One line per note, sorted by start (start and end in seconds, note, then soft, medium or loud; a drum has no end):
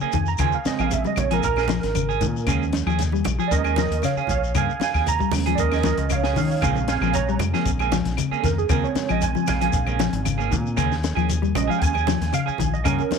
0.00 0.17 A#3 soft
0.00 0.17 C#4 soft
0.00 0.16 G#4 medium
0.00 muted fingered electric bass stroke soft
0.00 shekere soft
0.12 0.37 F2 medium
0.12 0.31 D#3 medium
0.12 0.27 G#5 medium
0.12 kick medium
0.12 closed hi-hat medium
0.12 low conga medium
0.12 shekere medium
0.26 0.39 A#5 medium
0.26 shekere soft
0.38 0.52 D#2 medium
0.38 0.57 C#3 medium
0.38 0.55 F3 medium
0.38 0.55 A#3 medium
0.38 0.56 C#4 medium
0.38 0.56 G#4 medium
0.38 0.53 G#5 medium
0.38 kick medium
0.38 closed hi-hat medium
0.38 claves medium
0.38 shekere medium
0.52 0.65 F5 medium
0.52 shekere soft
0.65 1.39 C#3 medium
0.65 1.40 G#3 soft
0.65 1.40 C4 medium
0.65 0.79 D#5 medium
0.65 muted fingered electric bass stroke soft
0.65 snare medium
0.65 closed hi-hat soft
0.65 high conga medium
0.65 shekere medium
0.79 1.02 A#1 medium
0.79 0.97 F3 medium
0.79 0.95 A#3 soft
0.79 0.95 C#4 soft
0.79 0.94 G#4 medium
0.79 0.91 F5 medium
0.79 claves medium
0.79 shekere soft
0.91 1.05 E5 medium
0.91 closed hi-hat medium
0.91 high conga medium
0.91 low conga medium
0.91 shekere medium
1.04 1.23 G3 medium
1.04 1.18 D#5 medium
1.04 high conga medium
1.04 shekere soft
1.16 1.40 A#1 medium
1.16 1.31 C#5 medium
1.16 closed hi-hat medium
1.16 high conga medium
1.16 low conga medium
1.16 claves medium
1.16 shekere medium
1.31 1.49 F3 medium
1.31 1.47 A#3 soft
1.31 1.46 C#4 soft
1.31 1.46 G#4 medium
1.31 1.43 A#4 medium
1.31 closed hi-hat soft
1.31 shekere soft
1.40 1.79 A#1 loud
1.40 1.44 A4 medium
1.40 2.45 A#4 loud
1.40 kick medium
1.40 closed hi-hat medium
1.40 shekere medium
1.56 1.73 A#3 soft
1.56 1.73 C#4 soft
1.56 1.72 G#4 medium
1.56 snare soft
1.56 high conga medium
1.56 claves medium
1.56 shekere soft
1.68 1.87 F3 medium
1.68 snare medium
1.68 closed hi-hat medium
1.68 high conga medium
1.68 low conga medium
1.68 shekere medium
1.83 2.23 G#1 medium
1.83 snare soft
1.83 closed hi-hat medium
1.83 shekere soft
1.95 2.13 C#3 medium
1.95 closed hi-hat medium
1.95 high conga medium
1.95 claves medium
1.95 shekere medium
2.09 2.24 C#4 medium
2.09 2.24 G#4 medium
2.09 shekere soft
2.21 2.49 A#2 medium
2.21 2.39 D#3 medium
2.21 kick medium
2.21 closed hi-hat medium
2.21 low conga medium
2.21 shekere medium
2.37 shekere soft
2.46 2.83 D#2 loud
2.46 2.65 C#3 medium
2.46 2.82 F3 soft
2.46 2.82 G#3 medium
2.46 2.63 A#3 medium
2.46 2.82 C#4 medium
2.46 2.64 C#4 medium
2.46 2.64 G#4 medium
2.46 kick medium
2.46 closed hi-hat medium
2.46 claves medium
2.46 shekere medium
2.63 shekere soft
2.73 snare medium
2.73 closed hi-hat medium
2.73 high conga medium
2.73 shekere medium
2.86 3.21 D#2 medium
2.86 3.04 F3 medium
2.86 3.03 C#4 soft
2.86 3.02 G#4 medium
2.86 claves medium
2.86 shekere soft
2.99 snare soft
2.99 closed hi-hat medium
2.99 low conga medium
2.99 shekere medium
3.12 3.31 G3 medium
3.12 high conga medium
3.12 shekere soft
3.24 3.37 A#1 medium
3.24 closed hi-hat medium
3.24 high conga medium
3.24 low conga medium
3.24 claves medium
3.24 shekere medium
3.39 3.56 F3 medium
3.39 3.55 C#4 soft
3.39 3.54 G#4 medium
3.39 shekere soft
3.48 3.87 D#2 loud
3.48 3.74 F3 medium
3.48 3.75 G#3 soft
3.48 3.75 C#4 medium
3.48 3.75 A#4 loud
3.48 3.51 D5 medium
3.48 kick medium
3.48 closed hi-hat medium
3.52 3.77 D#5 loud
3.52 shekere medium
3.64 3.80 C#4 soft
3.64 3.79 G#4 medium
3.64 high conga medium
3.64 claves medium
3.64 shekere soft
3.76 3.95 F3 medium
3.76 4.02 A#4 medium
3.76 4.03 D#5 medium
3.76 snare medium
3.76 closed hi-hat medium
3.76 high conga medium
3.76 low conga medium
3.76 shekere medium
3.91 4.02 D#2 medium
3.91 closed hi-hat medium
3.91 shekere soft
4.02 4.21 C#3 medium
4.02 4.28 C#5 medium
4.02 4.29 F5 medium
4.02 snare soft
4.02 closed hi-hat medium
4.02 high conga medium
4.02 claves medium
4.02 shekere medium
4.16 4.32 C#4 soft
4.16 4.32 G#4 medium
4.16 muted fingered electric bass stroke soft
4.16 shekere soft
4.27 4.52 A#1 medium
4.27 4.54 C#5 medium
4.27 4.55 F5 medium
4.27 kick medium
4.27 closed hi-hat soft
4.27 low conga medium
4.27 shekere medium
4.44 shekere soft
4.55 4.67 G2 medium
4.55 4.73 C#3 medium
4.55 4.71 A#3 medium
4.55 4.71 C#4 medium
4.55 4.71 G#4 medium
4.55 4.80 F5 medium
4.55 4.81 G#5 medium
4.55 kick loud
4.55 closed hi-hat medium
4.55 claves medium
4.55 shekere medium
4.70 shekere soft
4.80 5.06 F5 medium
4.80 5.07 G#5 medium
4.80 muted fingered electric bass stroke soft
4.80 snare medium
4.80 closed hi-hat soft
4.80 high conga medium
4.80 shekere medium
4.94 5.18 D#2 medium
4.94 5.10 C#4 soft
4.94 5.10 G#4 medium
4.94 kick medium
4.94 snare soft
4.94 claves medium
4.94 shekere soft
5.06 5.33 A#5 loud
5.06 closed hi-hat medium
5.06 low conga medium
5.06 shekere medium
5.19 5.38 G3 medium
5.19 kick medium
5.19 high conga medium
5.19 shekere soft
5.31 5.55 D#2 medium
5.31 6.59 F3 medium
5.31 6.59 G#3 soft
5.31 6.60 C#4 medium
5.31 snare soft
5.31 open hi-hat medium
5.31 high conga medium
5.31 low conga medium
5.31 claves medium
5.31 shekere medium
5.46 5.65 F3 medium
5.46 5.62 C#4 soft
5.46 5.61 G#4 medium
5.46 closed hi-hat medium
5.46 shekere soft
5.55 5.94 D#2 loud
5.55 5.83 A#4 medium
5.55 5.59 D5 medium
5.55 kick medium
5.55 closed hi-hat medium
5.55 shekere medium
5.60 5.84 D#5 loud
5.71 5.88 C#4 soft
5.71 5.87 G#4 medium
5.71 snare soft
5.71 high conga medium
5.71 claves medium
5.71 shekere soft
5.83 6.03 F3 medium
5.83 6.09 A#4 medium
5.83 6.11 D#5 medium
5.83 kick medium
5.83 snare medium
5.83 closed hi-hat soft
5.83 high conga medium
5.83 shekere medium
5.98 6.38 C#2 medium
5.98 closed hi-hat medium
5.98 shekere soft
6.10 6.28 C#3 medium
6.10 6.35 C#5 medium
6.10 6.36 F5 medium
6.10 closed hi-hat medium
6.10 high conga medium
6.10 claves medium
6.10 shekere medium
6.24 6.40 C#4 soft
6.24 6.39 G#4 medium
6.24 snare medium
6.24 shekere soft
6.36 6.64 D#3 medium
6.36 6.54 D#3 medium
6.36 6.61 C#5 medium
6.36 6.62 F5 medium
6.36 kick medium
6.36 open hi-hat medium
6.36 low conga medium
6.36 shekere medium
6.51 shekere soft
6.61 6.98 A#1 medium
6.61 8.66 C#3 medium
6.61 6.81 C#3 medium
6.61 6.78 F3 medium
6.61 8.66 G#3 soft
6.61 6.78 A#3 medium
6.61 8.67 C4 medium
6.61 6.79 C#4 medium
6.61 6.79 G#4 medium
6.61 6.87 F5 medium
6.61 6.88 G#5 medium
6.61 kick medium
6.61 closed hi-hat medium
6.61 claves medium
6.61 shekere medium
6.76 high conga medium
6.76 shekere soft
6.88 7.13 F5 medium
6.88 7.14 G#5 medium
6.88 snare medium
6.88 closed hi-hat medium
6.88 high conga medium
6.88 shekere medium
7.01 7.36 A#1 medium
7.01 7.20 F3 medium
7.01 7.18 A#3 soft
7.01 7.17 C#4 soft
7.01 7.17 G#4 medium
7.01 claves medium
7.01 shekere soft
7.13 7.39 C#5 medium
7.13 7.40 A#5 medium
7.13 closed hi-hat medium
7.13 high conga medium
7.13 low conga medium
7.13 shekere medium
7.28 7.46 G3 medium
7.28 shekere soft
7.39 7.52 F2 medium
7.39 closed hi-hat medium
7.39 high conga medium
7.39 low conga medium
7.39 claves medium
7.39 shekere medium
7.54 7.72 F3 medium
7.54 7.70 A#3 medium
7.54 7.69 C#4 medium
7.54 7.69 G#4 medium
7.54 snare soft
7.54 shekere soft
7.65 8.02 A#1 loud
7.65 kick medium
7.65 closed hi-hat medium
7.65 shekere medium
7.79 7.96 A#3 soft
7.79 7.96 C#4 medium
7.79 7.95 G#4 medium
7.79 high conga medium
7.79 claves medium
7.79 shekere soft
7.92 8.10 F3 medium
7.92 snare medium
7.92 closed hi-hat medium
7.92 high conga medium
7.92 low conga medium
7.92 shekere medium
8.05 8.17 A#1 medium
8.05 snare soft
8.05 closed hi-hat medium
8.05 shekere soft
8.17 8.36 C#3 medium
8.17 closed hi-hat medium
8.17 high conga medium
8.17 claves medium
8.17 shekere medium
8.31 8.47 A#3 soft
8.31 8.47 C#4 soft
8.31 8.47 G#4 soft
8.31 muted fingered electric bass stroke soft
8.31 shekere soft
8.40 8.67 F2 medium
8.40 8.62 D#3 medium
8.40 8.44 A4 medium
8.40 kick medium
8.40 snare soft
8.40 closed hi-hat medium
8.45 8.57 A#4 medium
8.45 low conga medium
8.45 shekere medium
8.58 8.70 G#4 medium
8.58 shekere soft
8.69 8.82 D#2 loud
8.69 10.73 C#3 medium
8.69 8.88 C#3 medium
8.69 8.86 F3 medium
8.69 10.74 G#3 soft
8.69 8.86 A#3 medium
8.69 10.74 C4 medium
8.69 8.86 C#4 medium
8.69 8.86 G#4 medium
8.69 8.83 A#4 medium
8.69 kick loud
8.69 closed hi-hat medium
8.69 claves medium
8.69 shekere medium
8.84 9.09 C#5 medium
8.84 shekere soft
8.95 muted fingered electric bass stroke soft
8.95 snare medium
8.95 closed hi-hat medium
8.95 high conga medium
8.95 shekere medium
9.09 9.33 A#1 medium
9.09 9.27 F3 medium
9.09 9.25 C#4 soft
9.09 9.24 G#4 soft
9.09 9.22 D#5 medium
9.09 claves medium
9.09 shekere soft
9.21 9.48 G#5 loud
9.21 closed hi-hat medium
9.21 high conga medium
9.21 shekere medium
9.35 9.53 F3 medium
9.35 high conga medium
9.35 shekere soft
9.47 9.71 A#1 medium
9.47 11.00 F5 medium
9.47 11.00 G#5 medium
9.47 snare soft
9.47 closed hi-hat soft
9.47 high conga medium
9.47 low conga medium
9.47 claves medium
9.47 shekere medium
9.61 9.79 F3 medium
9.61 9.77 A#3 soft
9.61 9.77 C#4 soft
9.61 9.76 G#4 medium
9.61 closed hi-hat medium
9.61 shekere soft
9.73 10.09 A#1 loud
9.73 kick medium
9.73 closed hi-hat medium
9.73 shekere medium
9.87 10.03 A#3 soft
9.87 10.02 C#4 medium
9.87 10.02 G#4 soft
9.87 high conga medium
9.87 claves medium
9.87 shekere soft
9.99 10.18 F3 medium
9.99 snare medium
9.99 closed hi-hat medium
9.99 high conga medium
9.99 shekere medium
10.13 10.53 G#1 loud
10.13 closed hi-hat medium
10.13 shekere soft
10.25 10.43 C#3 medium
10.25 closed hi-hat medium
10.25 high conga medium
10.25 claves medium
10.25 shekere medium
10.38 10.55 A#3 medium
10.38 10.54 C#4 medium
10.38 10.54 G#4 medium
10.38 shekere soft
10.51 10.79 A#2 loud
10.51 10.69 D#3 medium
10.51 kick medium
10.51 closed hi-hat medium
10.51 low conga medium
10.51 shekere medium
10.66 shekere soft
10.77 11.14 D#2 loud
10.77 10.95 C#3 medium
10.77 10.94 A#3 medium
10.77 10.94 C#4 medium
10.77 10.94 G#4 medium
10.77 kick medium
10.77 closed hi-hat medium
10.77 claves medium
10.77 shekere loud
10.91 snare soft
10.91 shekere soft
11.04 snare medium
11.04 closed hi-hat soft
11.04 high conga medium
11.04 shekere medium
11.15 11.52 D#2 medium
11.15 11.35 F3 medium
11.15 11.32 C#4 medium
11.15 11.32 G#4 medium
11.15 claves medium
11.15 shekere soft
11.29 closed hi-hat medium
11.29 low conga medium
11.29 shekere medium
11.42 11.61 G3 medium
11.42 high conga medium
11.42 shekere soft
11.55 11.68 A#1 medium
11.55 11.91 F3 medium
11.55 11.91 G#3 soft
11.55 11.92 C#4 medium
11.55 11.69 D#5 medium
11.55 closed hi-hat medium
11.55 high conga loud
11.55 low conga medium
11.55 claves medium
11.55 shekere medium
11.68 11.87 F3 medium
11.68 11.84 C#4 soft
11.68 11.84 G#4 medium
11.68 11.81 F5 medium
11.68 shekere soft
11.78 12.18 D#2 loud
11.78 11.82 G5 medium
11.78 kick medium
11.78 closed hi-hat medium
11.83 12.33 G#5 loud
11.83 shekere loud
11.94 12.10 C#4 soft
11.94 12.10 G#4 medium
11.94 high conga medium
11.94 claves medium
11.94 shekere soft
12.07 12.25 F3 medium
12.07 snare medium
12.07 closed hi-hat medium
12.07 high conga medium
12.07 low conga medium
12.07 shekere medium
12.21 12.32 D#2 medium
12.21 snare soft
12.21 closed hi-hat medium
12.21 shekere soft
12.32 12.51 C#3 medium
12.32 12.47 F5 loud
12.32 closed hi-hat medium
12.32 high conga medium
12.32 claves medium
12.32 shekere medium
12.46 12.62 C#4 soft
12.46 12.62 G#4 medium
12.46 12.73 G#5 medium
12.46 muted fingered electric bass stroke soft
12.46 shekere soft
12.58 12.83 A#1 medium
12.58 12.77 D#3 medium
12.58 kick medium
12.58 closed hi-hat medium
12.58 low conga medium
12.58 shekere medium
12.74 12.85 D#5 medium
12.74 shekere soft
12.84 12.98 G2 medium
12.84 13.03 C#3 medium
12.84 13.01 A#3 medium
12.84 13.01 C#4 medium
12.84 13.19 C#4 medium
12.84 13.02 G#4 medium
12.84 13.19 A#4 loud
12.84 kick medium
12.84 closed hi-hat medium
12.84 claves medium
12.84 shekere medium
12.99 high conga medium
12.99 shekere soft
13.11 muted fingered electric bass stroke soft
13.11 snare medium
13.11 closed hi-hat medium
13.11 high conga medium
13.11 shekere medium